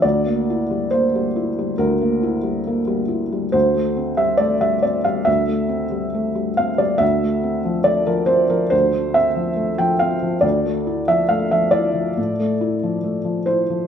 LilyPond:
<<
  \new Staff \with { instrumentName = "Felt piano" } { \time 4/4 \key d \minor \tempo 4 = 69 d''4 c''4 bes'2 | c''8. e''16 d''16 e''16 d''16 f''16 e''4. f''16 d''16 | e''4 d''16 bes'16 c''16 bes'16 c''8 e''8. g''16 f''8 | d''8. e''16 f''16 e''16 d''2 c''8 | }
  \new Staff \with { instrumentName = "Felt piano" } { \clef bass \time 4/4 \key d \minor d,16 bes16 e'16 g16 bes16 g16 e'16 g16 d,16 bes16 e'16 g16 bes16 g16 e'16 g16 | d,16 a16 c'16 g16 a16 g16 c'16 g16 d,16 a16 c'16 g16 a16 g16 c'16 g16 | d,16 a16 c'16 f16 a16 f16 c'16 f16 d,16 a16 c'16 f16 a16 f16 c'16 f16 | d,16 a16 e'16 f16 a16 f16 e'16 f16 a,16 a16 e'16 f16 a16 f16 e'16 f16 | }
>>